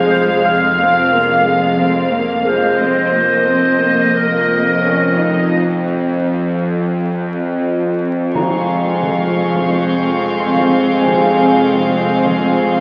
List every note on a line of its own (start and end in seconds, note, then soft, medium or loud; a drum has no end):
0.00 2.78 F1 medium
0.00 2.78 F2 medium
0.00 2.78 F2 soft
0.00 0.78 G#3 medium
0.00 2.78 F5 medium
0.00 0.75 G#5 soft
0.00 2.43 F6 soft
0.00 1.35 G#6 soft
0.10 0.47 C5 medium
0.45 1.80 F5 medium
0.79 1.13 C4 medium
1.13 1.46 A#3 medium
1.13 3.11 G#4 soft
1.13 3.11 C6 soft
1.35 2.44 A6 soft
1.45 1.79 G#3 soft
1.80 2.14 C4 soft
2.13 2.47 A#3 soft
2.47 2.81 G#3 soft
2.47 4.18 C5 medium
2.47 4.46 F6 soft
2.80 5.50 F1 soft
2.80 8.31 F2 medium
2.80 5.50 F2 soft
2.80 3.14 C4 medium
2.80 5.51 D#5 medium
3.15 3.49 A#3 soft
3.49 3.83 C4 soft
3.82 4.84 A#3 soft
4.17 5.54 A#4 medium
4.83 5.18 C#4 soft
5.18 5.54 D#4 soft
8.33 12.80 F1 soft
8.33 12.80 F2 medium
8.33 12.80 F2 soft
8.33 12.80 G#3 soft
8.33 12.80 C4 soft
8.33 12.80 G#4 soft
8.33 12.80 F5 soft
8.33 10.35 A#5 soft
8.33 12.80 C6 soft
8.33 12.71 C#6 soft
8.33 taiko medium
9.03 taiko medium
9.54 taiko medium
9.70 12.80 G6 soft
10.40 12.39 C6 soft
10.56 taiko medium
11.07 taiko medium
11.75 taiko medium
12.25 taiko medium